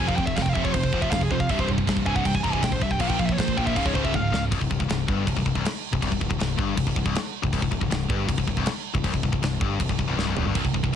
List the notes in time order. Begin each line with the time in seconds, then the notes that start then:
0.00 F1 F2 C3 F3
0.08 F5, kick
0.16 F1 F2 C3 G5, kick
0.26 E5, kick
0.36 F1 F2 C3 F5, kick, snare, crash
0.42 G5, kick
0.49 F5
0.54 F1 F2 C3 F3 E5, kick
0.63 C#5, kick
0.73 F1 F2 C3 C5, kick, crash
0.83 kick
0.93 F1 F2 C3 F3, kick
1.02 E5, kick
1.10 F1 F2 C3 F5, kick, snare, crash
1.21 G#4, kick
1.31 F2 C3 C5, kick
1.40 F5, kick
1.49 C1 C2 G2 C3 E5, kick, crash
1.59 C5, kick
1.69 C1 C2 G2, kick
1.78 kick
1.87 C1 C2 G2, kick, snare, crash
1.97 kick
2.06 C1 C2 G2 C3 G#5, kick
2.16 F#5, kick
2.25 C1 C2 G2 G5, kick, crash
2.35 G#5, kick
2.43 C1 C2 G2 C3 A#5, kick
2.52 G#5, kick
2.62 A#1 C2 G2 G5, kick, snare, crash
2.72 C5, kick
2.81 C1 C2 G2 E5, kick
2.91 G5, kick
3.00 A#1 A#2 F3 A#3 F5, kick, crash
3.10 G5, kick
3.19 A#1 A#2 F3 F5, kick
3.26 E5, kick
3.31 C#5
3.37 A#1 A#2 F3 C5, kick, snare, crash
3.48 kick
3.57 A#1 A#2 F3 A#3 G5, kick
3.67 E5, kick
3.76 C#1 C#2 G#2 C#3 F5, kick, crash
3.85 C#5, kick
3.95 C#1 C#2 G#2 C#3 C5, kick
4.04 E5, kick
4.14 C#1 C#2 G#2 F5, kick, high tom
4.32 C#2 G#2, snare
4.51 C1 C2, kick, crash
4.60 C1 C2, kick
4.70 C1 C2, kick
4.80 C1 C2, kick
4.89 C1 C2, snare, crash
5.08 G1 G2, kick
5.27 C1 C2, kick, crash
5.37 C1 C2, kick
5.46 C1 C2, kick
5.55 C1 C2, kick
5.65 snare, crash
5.93 C1 C2, kick
6.02 C1 C2, kick, crash
6.11 C1 C2, kick
6.21 C1 C2, kick
6.29 C1 C2, kick
6.39 C1 C2, snare, crash
6.58 G1 G2, kick
6.77 C1 C2, kick, crash
6.87 C1 C2, kick
6.96 C1 C2, kick
7.05 C1 C2, kick
7.15 snare, crash
7.43 C1 C2, kick
7.53 C1 C2, kick, crash
7.62 C1 C2, kick
7.71 C1 C2, kick
7.81 C1 C2, kick
7.90 C1 C2, snare, crash
8.09 G1 G2, kick
8.29 C1 C2, kick, crash
8.38 C1 C2, kick
8.47 C1 C2, kick
8.57 C1 C2, kick
8.66 snare, crash
8.94 C1 C2, kick
9.04 C1 C2, kick, crash
9.13 C1 C2, kick
9.23 C1 C2, kick
9.32 C1 C2, kick
9.42 C1 C2, snare, crash
9.61 G1 G2, kick
9.80 C1 C2, kick, crash
9.89 C1 C2, kick
9.99 C1 C2, kick
10.07 C1 C2
10.17 C#1 C#2, snare
10.27 C1 C2
10.35 E1 E2, floor tom
10.45 G1 G2
10.55 C1 C2, kick, crash
10.64 C1 C2, kick
10.74 C1 C2, kick
10.83 C1 C2, kick
10.92 C2